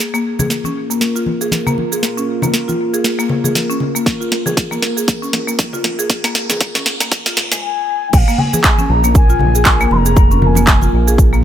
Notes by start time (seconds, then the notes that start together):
0.00 A#3 F4 A#4, snare, shaker
0.14 A#3, shaker
0.39 G#4, high conga, low conga, shaker
0.50 snare, shaker
0.64 C#4, high conga, shaker
0.90 A#3, shaker
1.01 snare, shaker
1.16 F4, shaker
1.26 high conga
1.41 G#4, shaker
1.52 snare, high conga, shaker
1.67 A#3, low conga, shaker
1.78 high conga
1.92 G#4, shaker
2.03 snare, shaker
2.17 C#4, shaker
2.42 A#3, high conga, low conga, shaker
2.54 snare, shaker
2.68 F4, high conga, shaker
2.94 G#4, shaker
3.04 snare, shaker
3.19 A#3, shaker
3.29 low conga
3.44 G#4, high conga, low conga, shaker
3.55 snare, high conga, shaker
3.70 C#4, shaker
3.80 low conga
3.95 A#3, shaker
4.06 kick, snare, shaker
4.21 F4, shaker
4.32 snare
4.46 G#4, high conga, low conga, shaker
4.57 kick, snare, shaker
4.71 A#3, high conga, shaker
4.82 snare
4.97 G#4, shaker
5.08 kick, snare, shaker
5.22 C#4, shaker
5.33 snare, high conga
5.47 A#3, shaker
5.59 kick, snare, high conga, shaker
5.73 F4, low conga, shaker
5.84 snare, high conga
5.99 G#4, shaker
6.10 kick, snare, shaker
6.24 A#3, snare, shaker
6.35 snare
6.49 G#4, snare, high conga, low conga, shaker
6.61 kick, snare, shaker
6.75 C#4, snare, high conga, shaker
6.86 snare
7.00 A#3, snare, shaker
7.12 kick, snare, shaker
7.26 F4, snare, shaker
7.37 snare, low conga
7.51 G#3, snare, high conga, low conga, shaker
7.62 G#5
8.13 A#1 A#3 F4 A#4 F5 G#5, kick, crash, shaker
8.28 A#3, shaker
8.38 G#5, low conga
8.53 G#4, high conga, shaker
8.64 G#5, finger snap, kick, clap, shaker
8.78 C#4, high conga, shaker
8.89 A#1 A#5
9.04 A#3, shaker
9.15 G#5, kick, shaker
9.30 F4, shaker
9.39 A#1, high conga, low conga
9.55 G#4, shaker
9.65 finger snap, kick, clap, high conga, shaker
9.81 A#3, shaker
9.91 F1 C6, high conga
9.96 A#5
10.06 G#4, shaker
10.17 kick, shaker
10.31 C#4, shaker
10.42 A#5, low conga
10.46 G#5
10.55 A#3, high conga, shaker
10.67 finger snap, kick, clap, shaker
10.81 F4, high conga, shaker
10.93 A#1
11.08 G#4, shaker
11.18 kick, shaker
11.33 A#3, shaker